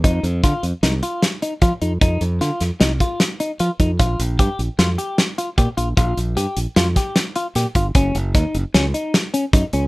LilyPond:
<<
  \new Staff \with { instrumentName = "Clean electric guitar" } { \time 5/4 \key f \major \tempo 4 = 152 ees'4 f'4 ees'8 f'4 ees'8 f'8 ees'8 | ees'4 f'4 ees'8 f'4 ees'8 f'8 ees'8 | f'4 g'4 f'8 g'4 f'8 g'8 f'8 | f'4 g'4 f'8 g'4 f'8 g'8 f'8 |
cis'4 ees'4 cis'8 ees'4 cis'8 ees'8 cis'8 | }
  \new Staff \with { instrumentName = "Fingered electric bass" } { \clef bass \time 5/4 \key f \major f,8 f,8 d16 r16 f,16 r16 c,8 r4. f16 r16 f,8 | f,8 f,8 d16 r16 f,16 r16 c,8 r4. f16 r16 f,8 | bes,,8 bes,,8 g,16 r16 bes,,16 r16 f,8 r4. bes,16 r16 bes,,8 | bes,,8 bes,,8 g,16 r16 bes,,16 r16 f,8 r4. bes,16 r16 g,,8 |
fis,,8 fis,,8 ees,16 r16 fis,,16 r16 cis,8 r4. fis,16 r16 cis,8 | }
  \new DrumStaff \with { instrumentName = "Drums" } \drummode { \time 5/4 <hh bd>8 hh8 <hh bd sn>8 hh8 <hh sn>8 hh8 <hh sn>8 hh8 <hh bd>8 hh8 | <hh bd>8 hh8 <hh sn>8 <hh sn>8 <hh sn>8 <hh bd>8 <hh sn>8 hh8 hh8 <hh bd>8 | <hh bd>8 hh8 <hh bd>8 hh8 <hh sn>8 hh8 <hh sn>8 hh8 <hh bd>8 hh8 | <hh bd>8 hh8 hh8 hh8 <hh sn>8 <hh bd sn>8 <hh sn>8 hh8 <hh sn>8 <hh bd>8 |
<hh bd>8 hh8 <hh bd sn>8 hh8 <hh sn>8 hh8 <hh sn>8 hh8 <hh bd>8 hh8 | }
>>